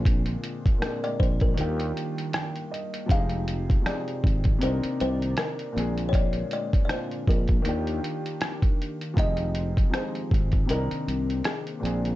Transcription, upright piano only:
0.00 0.63 A#2 medium
0.00 0.64 A#3 medium
0.00 0.64 C4 medium
0.00 0.65 D4 medium
0.00 0.66 G#4 medium
0.78 1.56 A#2 medium
0.78 1.54 A#3 medium
0.78 1.57 C4 medium
0.83 1.56 D4 medium
0.83 1.59 G#4 medium
1.54 2.83 D#3 medium
1.54 2.84 A#3 medium
1.54 2.84 D4 medium
1.59 2.85 F4 medium
1.59 2.86 G4 medium
2.34 2.69 G5 medium
2.71 3.07 D#5 medium
3.06 3.72 F3 medium
3.06 3.73 C4 medium
3.06 3.74 D#4 medium
3.11 3.75 G4 medium
3.11 3.76 G#4 medium
3.82 4.60 F3 medium
3.82 4.59 C4 medium
3.82 4.61 D#4 medium
3.87 4.62 G4 medium
3.87 4.63 G#4 medium
4.59 5.57 C3 medium
4.59 5.57 C4 medium
4.59 5.58 D4 medium
4.64 5.59 D#4 medium
4.64 5.60 A#4 medium
5.72 6.70 A#2 medium
5.72 6.71 A#3 medium
5.72 6.72 C4 medium
5.78 6.73 D4 medium
5.78 6.74 G#4 medium
6.86 7.64 A#2 medium
6.86 7.62 A#3 medium
6.86 7.65 C4 medium
6.91 7.64 D4 medium
6.91 7.66 F4 medium
7.62 8.91 D#3 medium
7.62 8.91 A#3 medium
7.62 8.92 D4 medium
7.67 8.93 F4 medium
7.67 8.94 G4 medium
9.14 9.80 F3 medium
9.14 9.81 C4 medium
9.14 9.81 D#4 medium
9.19 9.82 G4 medium
9.19 9.83 G#4 medium
9.90 10.67 F3 medium
9.90 10.66 C4 medium
9.90 10.69 D#4 medium
9.95 10.70 G4 medium
9.95 10.71 G#4 medium
10.66 11.64 C3 medium
10.66 11.65 C4 medium
10.66 11.65 D4 medium
10.71 11.66 D#4 medium
10.71 11.67 A#4 medium
11.80 12.15 A#2 medium
11.80 12.15 A#3 medium
11.80 12.15 C4 medium
11.85 12.15 D4 medium
11.85 12.15 G#4 medium

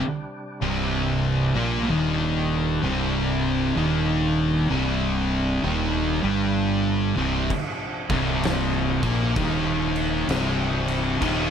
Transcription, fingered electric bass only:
0.62 1.52 C1 loud
1.55 1.87 A#1 loud
1.90 2.79 D#1 loud
2.83 3.72 C1 loud
3.77 4.66 D#1 loud
4.70 5.59 C1 loud
5.64 6.19 D#1 loud
6.24 7.13 G1 loud
7.17 7.48 C1 loud
8.10 8.98 C1 medium
9.03 9.34 A#1 loud
9.36 10.25 D#1 loud
10.28 11.17 C1 loud
11.21 11.50 D#1 loud

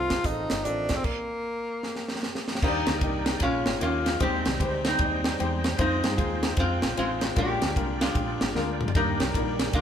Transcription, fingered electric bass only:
0.00 0.19 C2 medium
0.25 0.46 A1 medium
0.51 0.63 G1 medium
0.65 0.99 A1 medium
2.63 2.84 D#2 loud
2.88 3.00 D2 medium
3.01 3.36 C2 medium
3.41 3.63 A#1 loud
3.67 3.79 G#1 medium
3.82 4.15 D#2 loud
4.21 4.42 D#2 loud
4.47 4.59 C2 loud
4.60 4.94 D2 medium
4.99 5.33 D#2 medium
5.41 5.74 E2 medium
5.79 6.00 F2 loud
6.05 6.17 G2 medium
6.18 6.52 D#2 medium
6.57 6.79 F2 medium
6.84 6.96 A#1 medium
6.98 7.32 A1 medium
7.37 7.58 A#1 loud
7.63 7.75 D2 medium
7.76 8.10 C2 medium
8.15 8.37 A#1 medium
8.41 8.54 G#1 medium
8.55 8.89 D2 medium
8.95 9.16 D#2 loud
9.20 9.33 C2 medium
9.35 9.68 A#1 loud
9.74 9.81 D2 loud

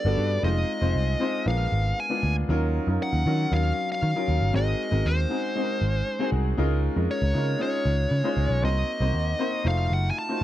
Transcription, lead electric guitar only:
0.00 0.44 D5 medium
0.44 1.47 D#5 medium
1.48 2.00 F5 medium
2.00 2.34 G#5 loud
3.03 3.54 F#5 loud
3.54 3.88 F5 loud
3.92 4.55 F5 loud
4.56 5.07 D#5 medium
5.07 6.30 C5 medium
7.11 7.61 C#5 medium
7.62 8.64 C#5 medium
8.65 9.67 D#5 loud
9.68 9.93 F5 loud
9.93 10.10 F#5 loud
10.10 10.17 G#5 medium
10.19 10.44 A5 loud

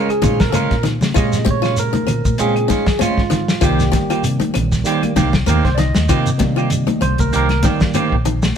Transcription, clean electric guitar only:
0.00 0.10 G#3 medium
0.10 muted clean electric guitar stroke soft
0.23 0.40 G#3 medium
0.23 0.40 C#4 medium
0.23 0.39 F4 medium
0.41 muted clean electric guitar stroke soft
0.54 0.74 G#3 medium
0.54 0.74 C#4 medium
0.54 0.75 F4 medium
0.84 muted clean electric guitar stroke soft
1.01 muted clean electric guitar stroke soft
1.15 1.35 G#3 medium
1.15 1.36 C#4 medium
1.15 1.36 F4 medium
1.47 muted clean electric guitar stroke soft
1.64 1.76 C#4 soft
1.64 1.77 F4 medium
1.78 muted clean electric guitar stroke soft
1.96 muted clean electric guitar stroke soft
2.26 muted clean electric guitar stroke soft
2.39 2.56 G#3 medium
2.39 2.55 C#4 medium
2.39 2.55 F4 medium
2.56 muted clean electric guitar stroke soft
2.70 2.87 G#3 medium
2.70 2.88 C#4 medium
2.70 2.87 F4 medium
2.88 muted clean electric guitar stroke soft
3.01 3.21 G#3 medium
3.01 3.21 C#4 medium
3.01 3.21 F4 medium
3.32 muted clean electric guitar stroke soft
3.50 muted clean electric guitar stroke soft
3.63 3.82 D#3 medium
3.63 3.83 A#3 medium
3.63 3.83 C4 medium
3.63 3.83 G4 medium
3.94 muted clean electric guitar stroke soft
4.10 4.23 A#3 soft
4.10 4.24 C4 soft
4.10 4.24 G4 soft
4.24 muted clean electric guitar stroke soft
4.42 muted clean electric guitar stroke soft
4.72 muted clean electric guitar stroke soft
4.86 5.03 D#3 medium
4.86 5.02 A#3 medium
4.86 5.03 C4 medium
4.86 5.02 G4 medium
5.03 muted clean electric guitar stroke soft
5.16 5.34 D#3 medium
5.16 5.34 A#3 medium
5.16 5.33 C4 medium
5.16 5.33 G4 medium
5.34 muted clean electric guitar stroke soft
5.49 5.68 D#3 medium
5.49 5.68 A#3 medium
5.49 5.68 C4 medium
5.49 5.69 G4 medium
5.79 muted clean electric guitar stroke soft
5.96 muted clean electric guitar stroke soft
6.09 6.29 D#3 medium
6.09 6.29 A#3 medium
6.09 6.29 C4 medium
6.09 6.29 G4 medium
6.41 muted clean electric guitar stroke soft
6.57 6.70 A#3 soft
6.57 6.70 C4 soft
6.57 6.70 G4 medium
6.71 muted clean electric guitar stroke soft
6.88 muted clean electric guitar stroke soft
7.20 muted clean electric guitar stroke soft
7.33 7.50 D#3 medium
7.33 7.49 A#3 medium
7.33 7.49 C4 medium
7.33 7.49 G4 medium
7.50 muted clean electric guitar stroke soft
7.64 7.81 D#3 medium
7.64 7.80 C4 medium
7.64 7.80 G4 medium
7.81 muted clean electric guitar stroke soft
7.94 8.15 D#3 medium
7.94 8.15 A#3 medium
7.94 8.15 C4 medium
7.94 8.15 G4 medium
8.25 muted clean electric guitar stroke soft
8.42 muted clean electric guitar stroke soft

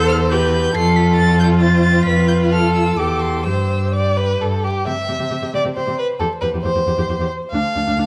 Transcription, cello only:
0.00 0.71 E2 medium
0.76 2.05 F2 medium
2.07 2.96 F2 medium
2.98 3.47 E2 medium
3.46 4.39 G2 medium
4.40 4.65 G2 medium
4.87 4.91 C3 soft
5.09 5.13 C3 soft
5.20 5.24 C3 medium
5.32 5.36 C3 soft
5.42 5.47 C3 soft
5.54 5.58 C3 medium
5.64 5.69 C3 soft
5.76 5.81 C3 soft
5.87 5.92 C3 medium
6.20 6.24 E2 medium
6.42 6.47 E2 soft
6.54 6.58 E2 medium
6.65 6.69 E2 soft
6.75 6.80 E2 soft
6.87 6.91 E2 medium
6.98 7.02 E2 soft
7.09 7.13 E2 soft
7.19 7.24 E2 medium
7.53 7.57 D2 medium
7.76 7.80 D2 medium
7.87 7.92 D2 medium
7.98 8.02 D2 medium

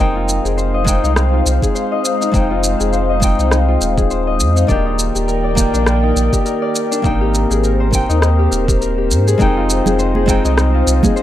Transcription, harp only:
0.00 1.03 D#4 medium
0.00 0.44 G#4 medium
0.00 1.52 A#4 medium
0.00 0.57 C5 medium
0.15 1.33 F4 medium
0.45 1.62 G#4 medium
0.57 1.75 C5 medium
0.74 1.91 D#5 medium
1.04 1.16 D#4 medium
1.16 2.21 D#4 medium
1.33 2.50 F4 medium
1.62 2.80 G#4 medium
1.75 2.92 C5 medium
1.92 3.09 D#5 loud
2.21 2.33 D#4 loud
2.51 3.68 F4 loud
2.80 3.97 G#4 medium
2.93 4.10 C5 medium
3.09 4.27 D#5 medium
3.39 3.51 D#4 medium
3.52 4.56 D#4 medium
3.68 6.20 F4 medium
3.98 5.21 G#4 medium
4.11 6.08 C5 medium
4.27 4.75 D#5 medium
4.56 4.75 D#4 loud
4.69 4.92 D4 medium
4.86 5.50 D#4 loud
5.15 6.32 G4 medium
5.28 6.45 A#4 medium
5.44 6.09 D5 medium
5.74 5.86 D4 loud
5.86 6.09 D4 medium
6.03 6.68 D#4 medium
6.33 7.21 G4 medium
6.45 7.63 A#4 medium
6.62 7.10 D5 medium
6.91 7.10 D4 loud
7.04 8.09 D#4 medium
7.21 7.56 G4 medium
7.50 8.45 G#4 medium
7.63 8.51 A#4 medium
7.80 9.78 C5 medium
8.09 8.22 D#4 loud
8.22 9.39 D#4 medium
8.39 8.68 G4 medium
8.52 8.80 A#4 medium
8.68 8.97 G4 medium
8.81 10.93 A#4 medium
8.98 9.33 G4 medium
9.27 9.86 G#4 medium
9.40 10.45 D#4 medium
9.57 10.74 F4 medium
9.86 10.15 G#4 medium
9.99 11.16 C5 medium
10.16 11.03 G#4 medium
10.45 10.57 D#4 loud
10.57 11.22 D#4 medium
10.74 11.22 F4 loud
11.04 11.22 G#4 medium
11.16 11.22 C5 medium

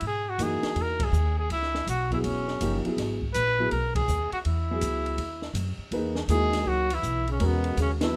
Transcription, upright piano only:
0.39 0.95 E3 medium
0.39 0.95 A#3 medium
0.39 0.95 D#4 medium
0.39 0.96 F#4 medium
2.12 2.58 F#3 medium
2.12 2.58 B3 medium
2.12 2.58 E4 medium
2.12 2.59 G#4 medium
2.61 2.82 F3 medium
2.61 2.82 A#3 medium
2.61 2.82 D#4 soft
2.61 2.83 G4 medium
2.85 3.17 F#3 medium
2.85 3.17 B3 medium
2.85 3.17 E4 medium
2.85 3.17 G#4 medium
3.58 3.70 F#3 medium
3.58 3.70 B3 medium
3.58 3.70 E4 medium
3.58 3.70 G#4 medium
4.70 5.17 F#3 medium
4.70 5.17 B3 medium
4.70 5.17 E4 medium
4.70 5.17 G#4 medium
5.92 6.14 A#3 medium
5.92 6.14 D#4 medium
5.92 6.14 G#4 medium
5.92 6.14 B4 medium
6.29 6.85 A#3 medium
6.29 6.86 D#4 medium
6.29 6.85 E4 medium
6.29 6.86 F#4 medium
7.40 7.96 G#3 medium
7.40 7.96 C#4 soft
7.40 7.96 F#4 medium
7.40 7.96 A#4 medium
8.02 8.16 F#3 medium
8.02 8.16 B3 medium
8.02 8.16 E4 medium
8.02 8.16 B4 medium

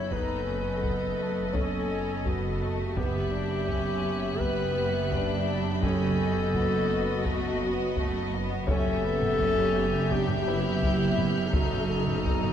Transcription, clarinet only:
0.00 0.13 C#5 medium
0.12 1.56 B4 medium
1.55 2.24 A4 medium
2.25 2.99 F#4 medium
2.98 4.41 G4 medium
4.40 5.55 B4 medium
5.83 7.27 A4 loud
7.25 7.97 F#4 medium
8.69 10.13 A4 loud
10.11 11.55 G4 medium
11.54 12.53 F#4 medium

